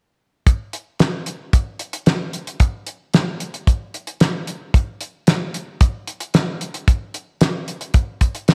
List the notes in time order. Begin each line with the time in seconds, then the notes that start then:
0.47 kick, closed hi-hat
0.73 closed hi-hat
0.99 snare, closed hi-hat
1.26 closed hi-hat
1.53 kick, closed hi-hat
1.79 closed hi-hat
1.93 closed hi-hat
2.06 snare, closed hi-hat
2.33 closed hi-hat
2.47 closed hi-hat
2.60 kick, closed hi-hat
2.87 closed hi-hat
3.14 snare, closed hi-hat
3.40 closed hi-hat
3.54 closed hi-hat
3.67 kick, closed hi-hat
3.94 closed hi-hat
4.07 closed hi-hat
4.20 snare, closed hi-hat
4.47 closed hi-hat
4.74 kick, closed hi-hat
5.01 closed hi-hat
5.27 snare, closed hi-hat
5.54 closed hi-hat
5.81 kick, closed hi-hat
6.07 closed hi-hat
6.20 closed hi-hat
6.34 snare, closed hi-hat
6.61 closed hi-hat
6.74 closed hi-hat
6.88 kick, closed hi-hat
7.14 closed hi-hat
7.41 snare, closed hi-hat
7.68 closed hi-hat
7.81 closed hi-hat
7.94 kick, closed hi-hat
8.21 kick, closed hi-hat
8.35 closed hi-hat
8.48 snare, closed hi-hat